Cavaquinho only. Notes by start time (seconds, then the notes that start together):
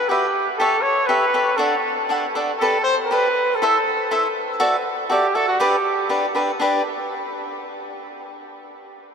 0.09 F#4 G4 B4 E5
0.60 G4 A4 C#5 E5
1.09 G4 A4 C#5 E5
1.34 G4 A4 C#5 E5
1.58 D4 A4 D5 F#5
2.09 D4 A4 D5 F#5
2.35 D4 A4 D5 F#5
2.61 G4 A4 B4 D5
3.11 G4 A4 B4 D5
3.62 E4 A4 C5 E5
4.11 E4 A4 C5 E5
4.60 F#4 A4 D5 E5
5.10 F#4 A4 D5 E5
5.35 F#4 A4 D5 E5
5.60 D4 G4 B4 D5
6.09 D4 G4 B4 D5
6.35 D4 G4 B4 D5
6.60 D4 G4 B4 D5